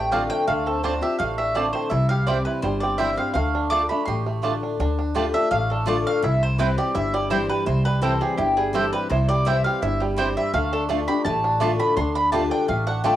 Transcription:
Already playing: upright bass A1, steel-string acoustic guitar A2, five-string banjo A3 C4 D4 G4, mandolin G5
0.11 steel-string acoustic guitar D3 A3 C4 F4, mandolin C4 F4 D5 F5 A5, five-string banjo D4
0.30 five-string banjo A3, mandolin G5
0.47 upright bass D2, steel-string acoustic guitar D3, five-string banjo A3, mandolin F5
0.66 five-string banjo C4, mandolin A4
0.83 steel-string acoustic guitar D3 A3 C4 F4, mandolin C4 F4 C5 D5 A5, five-string banjo D4
1.02 steel-string acoustic guitar C4 F4, five-string banjo G4, mandolin E5
1.19 upright bass A1, steel-string acoustic guitar A2, five-string banjo A3, mandolin F5
1.38 five-string banjo D4, mandolin E5
1.55 steel-string acoustic guitar D3 A3 C4 F4, five-string banjo A3, mandolin C4 F4 D5 A5
1.73 five-string banjo C4, mandolin C5
1.90 upright bass C2, steel-string acoustic guitar C3, five-string banjo E4, mandolin E5
2.09 five-string banjo G4, mandolin F5
2.27 steel-string acoustic guitar E3 G3 C4 E4, mandolin C4 E4 C5 D5 G5, five-string banjo C4
2.45 five-string banjo E4, mandolin B4
2.62 upright bass G1, steel-string acoustic guitar G2, five-string banjo G3, mandolin C5
2.80 five-string banjo C4, mandolin D5
2.98 steel-string acoustic guitar E3 G3 C4 E4, five-string banjo G3, mandolin C4 E4 C5 E5 G5
3.16 steel-string acoustic guitar C4 E4, five-string banjo C4, mandolin F5
3.34 upright bass D2, steel-string acoustic guitar D3, five-string banjo A3, mandolin F5
3.55 five-string banjo D4
3.70 steel-string acoustic guitar D3 A3 D4 F4, mandolin A3 F4 D5 A5 D6, five-string banjo D4
3.89 five-string banjo A3, steel-string acoustic guitar D4 F4, mandolin B5
4.05 upright bass A1, steel-string acoustic guitar A2, five-string banjo G4, mandolin C6
4.26 five-string banjo A3
4.42 steel-string acoustic guitar D3 A3 D4 F4, mandolin A3 F4 D5 A5, five-string banjo D4
4.63 five-string banjo D4
4.80 upright bass D2, steel-string acoustic guitar D3, five-string banjo D4
4.99 five-string banjo D4
5.15 steel-string acoustic guitar D3 A3 D4 F4, mandolin A3 F4 D5 A5, five-string banjo G4
5.33 five-string banjo D4, steel-string acoustic guitar D4 F4, mandolin E5
5.51 upright bass A1, steel-string acoustic guitar A2, five-string banjo A3, mandolin F5
5.70 five-string banjo D4, mandolin A4
5.86 steel-string acoustic guitar D3 A3 D4 F4, mandolin A3 F4 D5 A5, five-string banjo A3
6.07 five-string banjo D4, mandolin F5
6.22 upright bass C2, steel-string acoustic guitar C3, five-string banjo E4, mandolin E5
6.43 mandolin C5
6.58 steel-string acoustic guitar E3 G3 C4 E4, mandolin C4 E4 B4 C5 G5, five-string banjo C4
6.78 five-string banjo G4, mandolin D5
6.95 upright bass G1, steel-string acoustic guitar G2, five-string banjo E4, mandolin E5
7.14 five-string banjo G3, mandolin D5
7.30 steel-string acoustic guitar E3 G3 C4 E4, mandolin C4 E4 C5 G5, five-string banjo G4
7.50 five-string banjo G3, mandolin B4
7.66 upright bass C2, steel-string acoustic guitar C3, five-string banjo E4, mandolin C5
7.85 five-string banjo G3, mandolin B4
8.02 steel-string acoustic guitar E3 G3 C4 E4, mandolin C4 E4 A4 C5 G5, five-string banjo C4
8.21 five-string banjo G4, mandolin G#4
8.38 upright bass G1, steel-string acoustic guitar G2, five-string banjo E4, mandolin G4
8.57 five-string banjo G3, mandolin G#4
8.73 steel-string acoustic guitar E3 G3 C4 E4, mandolin C4 E4 A4 C5 G5, five-string banjo G4
8.93 five-string banjo G3, mandolin B4
9.10 upright bass C2, steel-string acoustic guitar C3, five-string banjo E4, mandolin C5
9.29 five-string banjo G3, mandolin D5
9.45 steel-string acoustic guitar E3 G3 C4 E4, mandolin C4 E4 C5 E5 G5, five-string banjo C4
9.64 five-string banjo G4, mandolin F5
9.82 upright bass G1, steel-string acoustic guitar G2, five-string banjo E4, mandolin E5
10.00 five-string banjo G3, mandolin G4
10.17 steel-string acoustic guitar E3 G3 C4 E4, mandolin C4 E4 C5 G5, five-string banjo G4
10.37 five-string banjo G3, mandolin E5
10.54 upright bass D2, steel-string acoustic guitar D3, five-string banjo A3, mandolin F5
10.73 five-string banjo D4, mandolin A4
10.89 steel-string acoustic guitar D3 A3 D4 F4, mandolin A3 F4 D5 A5, five-string banjo A3
11.08 steel-string acoustic guitar D4 F4, five-string banjo G4, mandolin B5
11.25 upright bass A1, steel-string acoustic guitar A2, five-string banjo A3, mandolin A5
11.44 five-string banjo D4
11.60 steel-string acoustic guitar D3 A3 D4 F4, mandolin A3 F4 D5 A5, five-string banjo A3
11.80 five-string banjo D4, mandolin B5
11.97 upright bass D2, steel-string acoustic guitar D3, five-string banjo D4, mandolin C6
12.15 five-string banjo D4, mandolin B5
12.32 steel-string acoustic guitar D3 A3 D4 F4, mandolin A3 F4 D5 A5, five-string banjo G4
12.51 five-string banjo D4, mandolin G5
12.68 upright bass A1, steel-string acoustic guitar A2, five-string banjo A3, mandolin F5
12.87 five-string banjo D4, mandolin F#5
13.04 steel-string acoustic guitar D3 A3 D4 F4, mandolin A3 F4 D5 G5 A5, five-string banjo A3

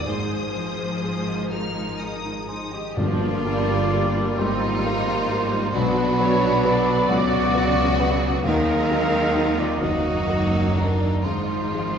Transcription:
Already playing: harp D#3 D#4 F#4 F5 A#5, grand piano D#4 F#4 A#4, violin section D#6
0.07 double bass section G#1, harp G#2, cello section G#2, grand piano G#2, viola section F3 G#4, violin section C5
0.32 grand piano D#3
0.55 harp F3, grand piano D#4
0.81 grand piano F4
1.03 harp G#4, grand piano G#4
1.28 grand piano D#5
1.51 violin section D#4 F6, clarinet D#4, harp F4, grand piano G#4, cor anglais A#4
1.77 grand piano F4
1.99 grand piano D#4, harp D#5, violin section D#6
2.25 grand piano D#3
2.48 violin section D#4 D#6, clarinet D#4, grand piano D#4, harp G#4, cor anglais C5
2.72 grand piano D#3, violin section G4, clarinet G4, cor anglais D#5
2.96 double bass section G1, grand piano G1 G2, timpani G2, cello section G2, viola section F3 A#3, french horn section F3 A#3, violin section D4 F4, clarinet F4, cor anglais D5
3.45 harp G3, viola section G3, grand piano F4 G4 A#4
3.92 viola section G3, grand piano F4 G4 A#4, harp A#4
4.37 grand piano G1 G3, double bass section G#1, cello section G#2, viola section C4, violin section D#4 F4, clarinet D#4, harp G4, cor anglais C5
4.84 viola section A#3, grand piano F4 G4 A#4, harp F5
5.30 viola section A#3, grand piano F4 G4 A#4, harp A#4
5.73 double bass section B1, grand piano B1 B2, cello section B2, harp B2, viola section F#3 B3, french horn section F#3 B3, violin section D4 F#4, clarinet D4, cor anglais B4
6.19 harp F#3, grand piano D4 F#4 B4, viola section C#5
6.64 grand piano D4 F#4 B4, harp B4, viola section D5
7.08 grand piano B1 B2, double bass section C#2, cello section C#3, violin section F#4, harp F#4, clarinet F#4, cor anglais D5
7.53 grand piano F#4 B4 D5, harp D5
7.99 grand piano F#4 B4 D5, harp B4
8.44 double bass section D#2, grand piano D#2 D#3, cello section D#3, harp D#3, french horn section F#3 D#4, viola section G#3 C4, violin section D#4 A#4, clarinet A#4, cor anglais F5
8.90 harp A#3, grand piano D#4 F#4 A#4
9.35 grand piano D#4 F#4 A#4, harp F#4
9.59 violin section F4, clarinet F4, cor anglais D5
9.80 double bass section F#1, grand piano D#2 D#3, cello section F#2, french horn section D#3 F#3, viola section F#3 A#3, violin section D#4 F#4, clarinet F#4, cor anglais D#5, harp F5
10.28 grand piano D#4 F#4 A#4, harp A#5
10.76 grand piano D#3 F#4 A#4, clarinet D4, violin section D4, harp F#4, cor anglais A#4
11.23 double bass section G#1, grand piano G#1 G#2, cello section G#2, harp G#2, viola section F3 G#3, french horn section F3 D#4, violin section D#4 F4, clarinet D#4, cor anglais C5
11.73 harp F3, grand piano D#4 F4 G#4

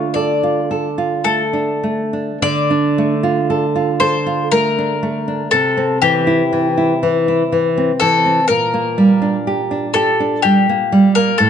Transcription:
Already playing: nylon-string guitar D3 F4, mandolin C#5
0.14 nylon-string guitar A4, mandolin D5
0.43 nylon-string guitar F4
0.71 nylon-string guitar A4
0.98 nylon-string guitar F4
1.24 nylon-string guitar A3, mandolin A4
1.53 nylon-string guitar D4
1.83 nylon-string guitar A3
2.13 nylon-string guitar D4
2.42 nylon-string guitar D3, mandolin D5
2.70 nylon-string guitar D4
2.98 nylon-string guitar A3
3.23 nylon-string guitar F4
3.50 nylon-string guitar A4
3.75 nylon-string guitar F4
4.00 nylon-string guitar A4, mandolin C5
4.26 nylon-string guitar F4
4.52 nylon-string guitar A3, mandolin A#4
4.78 nylon-string guitar D4
5.03 nylon-string guitar A3
5.28 nylon-string guitar D4
5.51 nylon-string guitar C3, mandolin A4
5.77 nylon-string guitar C4
6.02 nylon-string guitar E3, mandolin G4
6.27 nylon-string guitar E4
6.53 nylon-string guitar E3
6.77 nylon-string guitar E4
7.03 nylon-string guitar E3
7.28 nylon-string guitar E4
7.52 nylon-string guitar E3
7.77 nylon-string guitar C4
8.00 nylon-string guitar E3, mandolin A4
8.26 nylon-string guitar C4
8.48 nylon-string guitar A#2, mandolin A#4
8.74 nylon-string guitar A#3
8.98 nylon-string guitar G3
9.22 nylon-string guitar D4
9.47 nylon-string guitar G4
9.71 nylon-string guitar D4
9.94 nylon-string guitar G4, mandolin A4
10.20 nylon-string guitar D4
10.42 nylon-string guitar G3, mandolin G4
10.69 nylon-string guitar A#3
10.92 nylon-string guitar G3
11.15 nylon-string guitar A#3, mandolin A#4
11.38 nylon-string guitar A2, mandolin A4

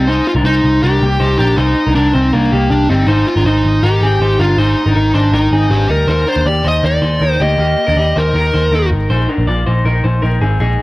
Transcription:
Already playing: picked electric bass C2
0.07 clean electric guitar D#4 C5, lead electric guitar D#4
0.27 lead electric guitar F4
0.35 picked electric bass C2, clean electric guitar D4 A#4
0.43 picked electric bass C2, lead electric guitar D#4, clean electric guitar D#4 C5
0.64 picked electric bass C2
0.82 picked electric bass C2, clean electric guitar D4 A#4, lead electric guitar G4
1.02 picked electric bass C2, clean electric guitar A#3 G4
1.20 picked electric bass C2, clean electric guitar D#4 C5
1.39 picked electric bass A#1, clean electric guitar D4 A#4, lead electric guitar G4
1.57 picked electric bass C2, lead electric guitar D#4, clean electric guitar D#4 C5
1.87 picked electric bass C2, clean electric guitar D4 A#4
1.95 picked electric bass C2, lead electric guitar D4, clean electric guitar D4 A#4
2.13 picked electric bass C2, lead electric guitar C4, clean electric guitar D#4 C5
2.33 picked electric bass C2, lead electric guitar A#3, clean electric guitar D4 A#4
2.52 picked electric bass C2, clean electric guitar A#3 G4
2.71 picked electric bass C2, lead electric guitar D4
2.90 picked electric bass G1, clean electric guitar G3 D#4, lead electric guitar C4
3.07 picked electric bass G#1, lead electric guitar D#4, clean electric guitar D#4 C5
3.27 lead electric guitar F4
3.36 picked electric bass G#1, clean electric guitar D4 A#4
3.45 picked electric bass G#1, lead electric guitar D#4, clean electric guitar D#4 C5
3.64 picked electric bass G#1
3.83 picked electric bass G#1, clean electric guitar D#4 A#4, lead electric guitar G4
4.01 picked electric bass G#1, clean electric guitar C4 G#4
4.20 picked electric bass G#1, clean electric guitar D#4 C5
4.39 picked electric bass G1, clean electric guitar D4 A#4, lead electric guitar F4
4.57 picked electric bass G#1, lead electric guitar D#4, clean electric guitar D#4 C5
4.86 picked electric bass G#1, clean electric guitar D4 A#4
4.95 picked electric bass G#1, clean electric guitar D#4 A#4
5.14 picked electric bass G#1, lead electric guitar D4, clean electric guitar D#4 C5
5.31 picked electric bass G#1, clean electric guitar D#4 A#4, lead electric guitar D#4
5.51 picked electric bass G#1, clean electric guitar C4 G#4
5.70 picked electric bass G#1, lead electric guitar D4 G4
5.89 picked electric bass D2, clean electric guitar G3 D#4, lead electric guitar A#4
6.07 picked electric bass D#2, clean electric guitar D#4 C5, lead electric guitar A#4
6.27 clean electric guitar D4 A#4, lead electric guitar C5
6.36 picked electric bass D#2
6.45 picked electric bass D#2, clean electric guitar G4 D5, lead electric guitar D5
6.64 picked electric bass D#2, clean electric guitar D#4 C5, lead electric guitar D#5
6.83 picked electric bass D#2, clean electric guitar D#4 A#4, lead electric guitar D5
7.02 picked electric bass D#2, clean electric guitar D#4 C5
7.21 picked electric bass D#2, clean electric guitar D#4 A#4
7.31 lead electric guitar C5
7.40 picked electric bass D2, clean electric guitar A#3 G4, lead electric guitar D#5
7.58 picked electric bass D#2, clean electric guitar A#3 G4
7.87 picked electric bass D#2, clean electric guitar D4 A#4
7.96 picked electric bass D#2, clean electric guitar G4 D5
8.16 picked electric bass D#2, clean electric guitar D#4 C5, lead electric guitar A#4
8.34 picked electric bass D#2, clean electric guitar D#4 A#4
8.54 picked electric bass D#2, clean electric guitar D#4 C5
8.71 picked electric bass D#2, clean electric guitar D#4 A#4
8.91 picked electric bass G#1
9.10 picked electric bass A#1, clean electric guitar D#4 C5
9.29 clean electric guitar D4 A#4
9.38 picked electric bass A#1
9.47 picked electric bass A#1, clean electric guitar F4 D5
9.66 picked electric bass A#1, clean electric guitar D#4 C5
9.85 picked electric bass A#1, clean electric guitar D#4 A#4
10.04 picked electric bass A#1, clean electric guitar D#4 C5
10.22 picked electric bass A#1, clean electric guitar D#4 A#4
10.41 picked electric bass G#1, clean electric guitar C4 G#4
10.60 picked electric bass A#1, clean electric guitar D#4 G#4

